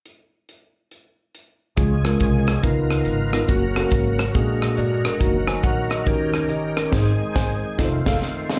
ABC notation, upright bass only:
X:1
M:4/4
L:1/8
Q:"Swing" 1/4=140
K:Db
V:1 name="Upright bass" clef=bass
z8 | D,,2 C,,2 D,,2 A,,,2 | G,,,2 A,,,2 B,,,2 =G,,,2 | G,,,2 B,,,2 E,,2 =A,,,2 |
A,,, z A,,, z F,,, F,,, z2 |]